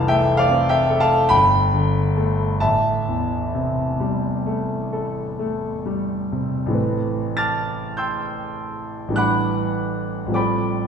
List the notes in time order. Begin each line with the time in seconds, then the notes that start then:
Already playing: F1 C2 E3 F5 A5
0.08 A3 E5 G5
0.37 D5 F5
0.50 C4
0.69 E5 G5
0.90 A4
1.00 F5 A5
1.29 G1 G5 B5
1.73 D3
2.17 A3 A4
2.60 A1 E5 A5
3.08 E2
3.55 C3
4.00 G3
4.46 A3
4.93 A4
5.39 A3
5.86 G3
6.32 C3
6.66 A1 E3
6.71 A3 C4 B4
7.37 A5 D6 F6 A6
7.97 G5 C6 E6 G6
9.08 A1 E3
9.12 G3 D4 F#6
9.17 B4 F#5 B5 D6
10.26 A1 F3 G3
10.32 C4 A4 D5 G5 D6
10.36 B5